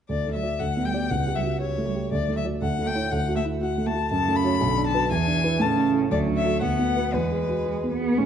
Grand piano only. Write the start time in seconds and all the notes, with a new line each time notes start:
0.09 D2
0.26 A3
0.43 F#4 D5
0.60 D2
0.77 B3
0.94 G4 D5
1.11 C#2
1.27 G4
1.43 F#4
1.61 G4
1.78 A3
1.94 G4
2.11 D2
2.29 A3
2.45 F#4 D5
2.62 D2
2.79 A3
2.95 E4 C#5
3.12 D2
3.28 F#4
3.45 E4
3.61 F#4
3.78 A3
3.94 F#4
4.11 F#2
4.28 A3
4.44 F#4 C#5
4.61 B1
4.78 D4
4.94 F#4 B4
5.10 E2
5.27 D4
5.43 E4 B4
5.60 A2
5.77 C#4
5.94 E4 A4
6.11 D2
6.28 D4
6.45 F#4 A4
6.62 D2
6.79 B3
6.96 F#4 B4
7.14 E2
7.31 G#4
7.49 F#4
7.66 G#4
7.83 B3
8.01 G#4
8.18 A2